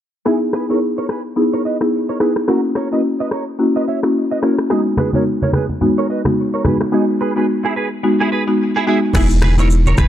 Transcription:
0.25 marimba B3 D#4 E4 G#4, clean electric guitar E4 G#4, finger snap, cross-stick
0.53 clean electric guitar G#4 B4, finger snap, cross-stick
0.69 marimba B3 D#4 E4 G#4, clean electric guitar A#4 C#5
0.98 clean electric guitar A#4 C#5
1.09 clean electric guitar G#4 B4, finger snap, cross-stick
1.36 marimba B3 D#4 E4 G#4
1.53 clean electric guitar A#4 C#5
1.65 clean electric guitar B4 D#5
1.81 marimba B3 D#4 E4 G#4, finger snap, cross-stick
2.09 clean electric guitar A#4 C#5
2.20 marimba B3 D#4 E4 G#4, clean electric guitar G#4 B4, finger snap, cross-stick
2.36 finger snap, cross-stick
2.48 marimba A#3 C#4 E4 F#4, clean electric guitar F#4 A#4, finger snap, cross-stick
2.75 clean electric guitar A#4 C#5, finger snap, cross-stick
2.92 marimba A#3 C#4 E4 F#4, clean electric guitar B4 D#5
3.20 clean electric guitar B4 D#5
3.31 clean electric guitar A#4 C#5, finger snap, cross-stick
3.59 marimba A#3 C#4 E4 F#4
3.76 clean electric guitar B4 D#5
3.88 clean electric guitar C#5 E5
4.03 marimba A#3 C#4 E4 F#4, finger snap, cross-stick
4.31 clean electric guitar B4 D#5
4.42 marimba A#3 C#4 E4 F#4, clean electric guitar A#4 C#5, finger snap, cross-stick
4.58 finger snap, cross-stick
4.70 marimba G#3 B3 D#4 F#4, clean electric guitar D#4 G#4, finger snap, cross-stick, shaker
4.86 shaker
4.97 clean electric guitar G#4 B4, finger snap, cross-stick, high conga
5.13 marimba G#3 B3 D#4 F#4, clean electric guitar A#4 C#5, high conga, shaker
5.26 shaker
5.42 clean electric guitar A#4 C#5, high conga, shaker
5.53 clean electric guitar G#4 B4, finger snap, cross-stick, high conga, shaker
5.69 high conga, shaker
5.81 marimba G#3 B3 D#4 F#4, low conga, shaker
5.97 clean electric guitar A#4 C#5, shaker
6.10 clean electric guitar B4 D#5
6.25 marimba G#3 B3 D#4 F#4, finger snap, cross-stick, high conga, shaker
6.36 shaker
6.54 clean electric guitar A#4 C#5
6.64 marimba G#3 B3 D#4 F#4, clean electric guitar G#4 B4, finger snap, cross-stick, high conga, low conga
6.81 finger snap, cross-stick, shaker
6.92 marimba G#3 B3 D#4 F#4, clean electric guitar D#4 G#4
7.21 clean electric guitar G#4 B4
7.36 marimba G#3 B3 D#4 F#4, clean electric guitar G#4 B4
7.65 clean electric guitar E4 G#4
7.76 clean electric guitar G#4 B4
8.03 marimba G#3 B3 D#4 F#4
8.20 clean electric guitar E4 G#4
8.32 clean electric guitar G#4 B4
8.47 marimba G#3 B3 D#4 F#4
8.76 clean electric guitar E4 G#4
8.87 marimba G#3 B3 D#4 F#4, clean electric guitar E4 G#4
9.13 sub bass E1, marimba G#3 B3 D#4 E4, clean electric guitar E4 G#4, finger snap, kick, cross-stick, crash, low conga, shaker
9.31 shaker
9.42 clean electric guitar G#4 B4, finger snap, cross-stick, high conga
9.57 marimba G#3 B3 D#4 E4, clean electric guitar A#4 C#5, high conga, shaker
9.70 shaker
9.86 clean electric guitar A#4 C#5, high conga, shaker
9.97 sub bass D#1, clean electric guitar G#4 B4, finger snap, kick, cross-stick, high conga, shaker

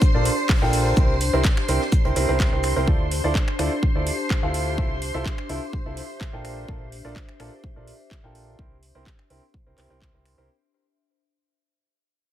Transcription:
Already playing: ambient pad D4 G4 C5 D5, string machine C5 C6
0.02 kick, shaker
0.14 fingered electric bass A#1, grand piano D4 F4 A4 A#4 D5
0.25 open hi-hat, shaker
0.49 kick, snare, clap, open hi-hat
0.62 fingered electric bass A#1, grand piano D4 F4 A4 A#4 G5, snare
0.73 open hi-hat, shaker
0.97 grand piano C4 E4 G4 A#4 C5, ambient pad D4, kick, shaker
1.21 open hi-hat, shaker
1.33 fingered electric bass C2, grand piano C4 E4 G4 A#4 C5
1.44 kick, snare, clap, shaker
1.57 finger snap, snare
1.68 fingered electric bass C2, grand piano C4 E4 G4 A#4 C5, open hi-hat, shaker
1.81 snare
1.92 kick, shaker
2.05 fingered electric bass C2, grand piano C4 E4 G4 A#4 C5, closed hi-hat
2.16 fingered electric bass C2, grand piano C4 E4 G4 A#4 C5, open hi-hat, shaker
2.29 fingered electric bass C2, grand piano C4 E4 G4 A#4 C5
2.40 kick, snare, clap, shaker
2.52 fingered electric bass C2, grand piano C4 E4 G4 A#4 C5
2.63 finger snap, open hi-hat, shaker
2.76 fingered electric bass C2, grand piano C4 E4 G4 A#4 C5
2.87 grand piano E4 F4 A4 C5 D5, string machine C5 C6, kick
3.01 ambient pad G4 C5
3.11 open hi-hat
3.24 fingered electric bass D2, grand piano E4 F4 A4 C5 D5
3.35 kick, clap
3.48 finger snap
3.59 fingered electric bass D2, grand piano E4 F4 A4 C5 D5, finger snap, open hi-hat
3.83 kick
3.95 fingered electric bass D2, grand piano E4 F4 A4 C5 D5
4.07 open hi-hat
4.30 kick, clap
4.43 fingered electric bass D2, grand piano E4 F4 A4 C5 F5
4.54 open hi-hat
4.78 grand piano E4 F4 A4 C5 E5, kick
5.02 open hi-hat
5.11 fingered electric bass C2, grand piano E4 F4 A4 C5 E5, ambient pad E5
5.26 kick, clap
5.38 finger snap
5.49 fingered electric bass C2, grand piano E4 F4 A4 C5 E5, open hi-hat
5.73 kick
5.86 fingered electric bass C2, grand piano E4 F4 A4 C5 E5
5.97 open hi-hat
6.21 kick, clap
6.33 fingered electric bass A#1, grand piano D4 F4 A4 A#4 G5
6.45 finger snap, open hi-hat
6.68 fingered electric bass A#1, grand piano D4 F4 A4 A#4 D5, kick
6.92 open hi-hat
7.05 fingered electric bass A#1, grand piano D4 F4 A4 A#4 D5
7.16 kick, clap
7.29 finger snap
7.40 fingered electric bass A#1, grand piano D4 F4 A4 A#4 D5, finger snap, open hi-hat
7.64 kick
7.76 fingered electric bass A#1, grand piano D4 F4 A4 A#4 D5
7.87 open hi-hat
8.11 kick, clap
8.24 fingered electric bass A#1, grand piano D4 F4 A4 A#4 G5
8.35 open hi-hat
8.59 grand piano C4 E4 G4 A#4 C5, kick
8.83 open hi-hat
8.95 fingered electric bass C2, grand piano C4 E4 G4 A#4 C5
9.06 kick, clap
9.19 finger snap
9.30 fingered electric bass C2, grand piano C4 E4 G4 A#4 C5, open hi-hat
9.54 kick
9.67 fingered electric bass C2, grand piano C4 E4 G4 A#4 C5
9.78 fingered electric bass C2, grand piano C4 E4 G4 A#4 C5, clap, open hi-hat
9.90 fingered electric bass C2, grand piano C4 E4 G4 A#4 C5
10.02 kick, clap
10.14 fingered electric bass C2, grand piano C4 E4 G4 A#4 C5
10.25 finger snap, open hi-hat
10.38 fingered electric bass C2, grand piano C4 E4 G4 A#4 C5

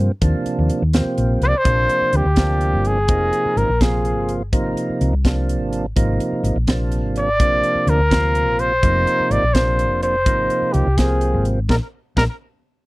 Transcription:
Already playing: tonewheel organ C3 F3 A#3 C4
0.21 fingered electric bass D#2, tonewheel organ C3 F3 A#3 D4, kick, closed hi-hat
0.46 muted fingered electric bass stroke, closed hi-hat
0.59 fingered electric bass D#2
0.70 closed hi-hat
0.82 fingered electric bass D#2
0.93 tonewheel organ C3 F3 A#3 C4, snare, closed hi-hat
1.05 muted fingered electric bass stroke
1.18 fingered electric bass A#1, closed hi-hat
1.41 fingered electric bass C2, trumpet C5, closed hi-hat
1.48 trumpet D5
1.58 trumpet C5
1.64 fingered electric bass A#1, tonewheel organ C3 F3 A#3 D4, kick, closed hi-hat
1.89 closed hi-hat
2.02 muted fingered electric bass stroke
2.13 fingered electric bass D2, trumpet G4, closed hi-hat
2.25 fingered electric bass D2
2.36 tonewheel organ C3 F3 A#3 D4, kick, snare, closed hi-hat
2.61 closed hi-hat
2.73 fingered electric bass G1
2.85 trumpet G#4, closed hi-hat
3.08 fingered electric bass F1, tonewheel organ C3 F3 A#3 D#4, kick, closed hi-hat
3.33 closed hi-hat
3.45 muted fingered electric bass stroke
3.56 fingered electric bass G#1, trumpet A#4, closed hi-hat
3.69 fingered electric bass A#1
3.80 tonewheel organ C3 F3 A#3 F4, trumpet G#4, kick, snare, closed hi-hat
4.05 closed hi-hat
4.17 fingered electric bass G1
4.29 closed hi-hat
4.52 fingered electric bass G#1, tonewheel organ C3 F3 A#3 D#4, kick, closed hi-hat
4.77 closed hi-hat
4.89 muted fingered electric bass stroke
5.01 fingered electric bass C2, closed hi-hat
5.13 fingered electric bass C2
5.24 tonewheel organ C3 F3 A#3 D4, kick, snare, closed hi-hat
5.49 closed hi-hat
5.60 fingered electric bass G#1
5.73 closed hi-hat
5.96 fingered electric bass G#1, tonewheel organ C3 F3 A#3 D#4, kick, closed hi-hat
6.20 closed hi-hat
6.32 muted fingered electric bass stroke
6.43 fingered electric bass G#1, closed hi-hat
6.56 fingered electric bass A#1
6.67 tonewheel organ C3 F3 A#3 D4, kick, snare, closed hi-hat
6.92 closed hi-hat
7.04 fingered electric bass G#1
7.16 trumpet D5, closed hi-hat
7.39 fingered electric bass A#1, tonewheel organ C3 F3 A#3 D4, kick, closed hi-hat
7.64 closed hi-hat
7.75 muted fingered electric bass stroke
7.87 fingered electric bass D2, trumpet A#4, closed hi-hat
7.99 fingered electric bass D2
8.11 tonewheel organ C3 F3 A#3 F4, kick, snare, closed hi-hat
8.35 closed hi-hat
8.47 fingered electric bass A#1
8.59 trumpet C5, closed hi-hat
8.82 fingered electric bass F1, tonewheel organ C3 F3 A#3 D#4, kick, closed hi-hat
9.07 closed hi-hat
9.20 muted fingered electric bass stroke
9.30 fingered electric bass G#1, trumpet D5, closed hi-hat
9.43 fingered electric bass A#1
9.54 tonewheel organ C3 F3 A#3 D4, trumpet C5, kick, snare, closed hi-hat
9.79 closed hi-hat
9.91 fingered electric bass F1
10.03 trumpet C5, closed hi-hat
10.26 fingered electric bass G#1, tonewheel organ C3 F3 A#3 D#4, kick, closed hi-hat
10.50 closed hi-hat
10.62 muted fingered electric bass stroke
10.73 fingered electric bass C2, trumpet G4, closed hi-hat
10.86 fingered electric bass C2
10.98 tonewheel organ C3 F3 A#3 C4, trumpet G#4, kick, snare, closed hi-hat
11.21 closed hi-hat
11.34 fingered electric bass G#1
11.45 closed hi-hat
11.69 fingered electric bass A#1, tonewheel organ G#3 A#3 D4, trumpet A#4, kick, snare
12.16 fingered electric bass A#1, tonewheel organ G#3 A#3 D4, trumpet A#4, kick, snare

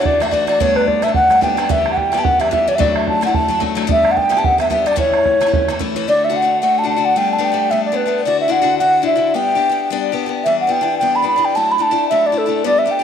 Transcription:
0.00 steel-string acoustic guitar E3 A3 D4 F#4
0.05 flute D5, bodhran
0.20 steel-string acoustic guitar E3 A3 D4 F#4, flute E5, bodhran
0.29 steel-string acoustic guitar E3 A3, flute D5 E5, bodhran
0.33 steel-string acoustic guitar D4 F#4
0.47 steel-string acoustic guitar E3 A3 D4 F#4, flute D5, bodhran
0.60 steel-string acoustic guitar G3 A3 B3 D4, flute C#5, bodhran
0.76 flute B4, bodhran
0.88 flute D5, bodhran
1.02 steel-string acoustic guitar G3 A3 B3 D4, flute E5, bodhran
1.07 steel-string acoustic guitar A3 B3 D4
1.14 flute F#5, bodhran
1.30 steel-string acoustic guitar G3 A3 B3 D4, bodhran
1.41 steel-string acoustic guitar G3 A3 B3 D4, flute G5, bodhran
1.57 steel-string acoustic guitar G3 A3 B3 D4, bodhran
1.69 steel-string acoustic guitar E3 G3 B3 G4, flute E5, bodhran
1.86 bodhran
1.93 flute F#5
1.97 flute G5, bodhran
2.12 steel-string acoustic guitar E3 G3 B3 G4, bodhran
2.17 steel-string acoustic guitar G3 B3 G4, flute A5
2.24 flute F#5, bodhran
2.39 steel-string acoustic guitar E3 G3 B3 G4, flute E5, bodhran
2.51 steel-string acoustic guitar E3 G3 B3 G4, flute E5, bodhran
2.67 steel-string acoustic guitar E3 G3 B3 G4, flute C#5
2.75 steel-string acoustic guitar F#3 A3 D4, flute E5
2.80 steel-string acoustic guitar E4, flute D5, bodhran
2.96 flute E5, bodhran
3.07 flute A5, bodhran
3.21 steel-string acoustic guitar F#3 A3 D4 E4, bodhran
3.25 steel-string acoustic guitar A3 D4 E4, flute F#5
3.34 flute A5, bodhran
3.48 steel-string acoustic guitar F#3 A3 D4 E4
3.60 steel-string acoustic guitar F#3 A3 D4 E4, bodhran
3.75 steel-string acoustic guitar F#3 A3 D4 E4, bodhran
3.87 steel-string acoustic guitar G3 B3 D4 G4, bodhran
3.92 flute E5
4.05 bodhran
4.11 flute F#5
4.17 flute G5, bodhran
4.29 steel-string acoustic guitar G3 B3 D4 G4, bodhran
4.37 steel-string acoustic guitar B3 D4 G4, flute A5
4.44 flute F#5, bodhran
4.58 steel-string acoustic guitar G3 B3 D4 G4, flute E5, bodhran
4.70 steel-string acoustic guitar G3 B3 D4 G4, flute E5, bodhran
4.86 steel-string acoustic guitar G3 B3 D4 G4, flute D5, bodhran
4.96 steel-string acoustic guitar A2 E3 A3 C#4 E4, flute C#5, bodhran
5.14 bodhran
5.25 bodhran
5.41 steel-string acoustic guitar E3 A3 C#4 E4, bodhran
5.46 steel-string acoustic guitar A3 C#4 E4
5.53 bodhran
5.68 steel-string acoustic guitar E3 A3 C#4 E4, bodhran
5.79 steel-string acoustic guitar E3 A3 C#4 E4, bodhran
5.96 steel-string acoustic guitar E3 A3 C#4 E4
6.08 steel-string acoustic guitar D3 A3 D4 F#4, flute D5
6.25 flute E5
6.29 steel-string acoustic guitar D3 A3 D4 F#4
6.36 flute F#5
6.42 steel-string acoustic guitar D3 A3 D4 F#4
6.61 steel-string acoustic guitar D3 A3 D4 F#4, flute F#5
6.79 flute A5
6.83 steel-string acoustic guitar D3 A3 D4 F#4
6.89 flute A5
6.96 steel-string acoustic guitar D3 A3 D4 F#4
7.05 flute F#5
7.16 steel-string acoustic guitar G3 A3 B3 D4, flute G5
7.33 flute A5
7.38 steel-string acoustic guitar G3 A3 B3 D4
7.43 flute G5
7.52 steel-string acoustic guitar G3 A3 B3 D4
7.71 steel-string acoustic guitar G3 A3 B3 D4, flute E5
7.85 flute D5
7.92 steel-string acoustic guitar G3 A3 B3 D4
7.96 flute B4
8.06 steel-string acoustic guitar G3 A3 B3 D4
8.25 steel-string acoustic guitar D3 D4 E4 F#4, flute D5
8.40 flute E5
8.48 steel-string acoustic guitar D3 D4 E4 F#4, flute F#5
8.62 steel-string acoustic guitar D3 D4 E4 F#4
8.78 steel-string acoustic guitar D3 D4 E4 F#4, flute F#5
9.02 steel-string acoustic guitar D3 D4 E4 F#4
9.06 flute E5
9.15 steel-string acoustic guitar D3 D4 E4 F#4
9.34 steel-string acoustic guitar G3 B3 D4 G4, flute G5
9.55 steel-string acoustic guitar B3 D4 G4
9.69 steel-string acoustic guitar B3 D4 G4
9.90 steel-string acoustic guitar G3 B3 D4 G4
10.12 steel-string acoustic guitar B3 D4 G4
10.26 steel-string acoustic guitar B3 D4 G4
10.44 steel-string acoustic guitar E3 G3 B3 D4, flute E5
10.61 flute F#5
10.67 steel-string acoustic guitar E3 G3 B3 D4
10.71 flute G5
10.81 steel-string acoustic guitar E3 G3 B3 D4
10.98 steel-string acoustic guitar E3 G3, flute G5
11.02 steel-string acoustic guitar B3 D4
11.16 flute B5
11.22 steel-string acoustic guitar E3 G3 B3 D4
11.28 flute B5
11.36 steel-string acoustic guitar E3 G3 B3 D4
11.45 flute G5
11.55 steel-string acoustic guitar F#3 A3 D4 E4, flute A5
11.72 flute B5
11.78 steel-string acoustic guitar A3 D4 E4
11.82 flute A5
11.91 steel-string acoustic guitar A3 D4 E4
12.09 steel-string acoustic guitar F#3 A3 D4 E4, flute E5
12.26 flute D5
12.32 steel-string acoustic guitar A3 D4 E4
12.38 flute A4
12.46 steel-string acoustic guitar A3 D4 E4
12.64 steel-string acoustic guitar G3 B3 D4 G4, flute D5
12.79 flute E5
12.86 steel-string acoustic guitar B3 D4 G4
12.91 flute G5
12.99 steel-string acoustic guitar D4 G4

